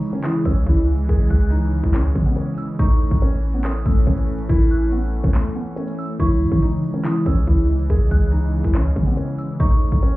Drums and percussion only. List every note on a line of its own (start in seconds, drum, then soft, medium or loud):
0.03 open hi-hat medium
0.24 clap loud
0.24 closed hi-hat medium
0.45 kick loud
0.45 closed hi-hat medium
0.67 kick loud
0.67 closed hi-hat soft
0.77 closed hi-hat medium
0.88 closed hi-hat soft
0.98 closed hi-hat medium
1.09 kick loud
1.09 closed hi-hat medium
1.30 kick medium
1.30 closed hi-hat medium
1.52 closed hi-hat medium
1.84 kick loud
1.94 clap loud
1.94 closed hi-hat medium
2.15 kick loud
2.37 closed hi-hat medium
2.58 closed hi-hat medium
2.79 kick loud
2.79 closed hi-hat medium
3.01 closed hi-hat medium
3.08 kick medium
3.08 closed hi-hat medium
3.15 closed hi-hat soft
3.22 closed hi-hat medium
3.43 open hi-hat medium
3.64 clap loud
3.64 closed hi-hat medium
3.86 kick loud
3.86 closed hi-hat medium
4.07 kick loud
4.07 closed hi-hat soft
4.18 closed hi-hat medium
4.28 closed hi-hat soft
4.39 closed hi-hat medium
4.50 kick loud
4.50 closed hi-hat medium
4.71 closed hi-hat medium
4.92 closed hi-hat medium
5.24 kick loud
5.35 clap loud
5.35 closed hi-hat medium
5.77 closed hi-hat medium
5.88 closed hi-hat soft
5.98 open hi-hat medium
6.20 kick loud
6.20 closed hi-hat medium
6.41 closed hi-hat medium
6.48 kick medium
6.48 closed hi-hat soft
6.55 closed hi-hat soft
6.62 closed hi-hat medium
6.84 open hi-hat medium
7.05 clap loud
7.05 closed hi-hat medium
7.26 kick loud
7.26 closed hi-hat medium
7.47 kick medium
7.47 closed hi-hat soft
7.58 closed hi-hat medium
7.69 closed hi-hat soft
7.79 closed hi-hat medium
7.90 kick loud
7.90 closed hi-hat medium
8.11 kick loud
8.11 closed hi-hat medium
8.32 closed hi-hat medium
8.64 kick loud
8.75 clap loud
8.75 closed hi-hat medium
8.96 kick loud
9.17 closed hi-hat medium
9.39 closed hi-hat medium
9.60 kick loud
9.60 closed hi-hat medium
9.81 closed hi-hat medium
9.88 kick loud
9.88 closed hi-hat soft
9.96 closed hi-hat soft
10.03 closed hi-hat medium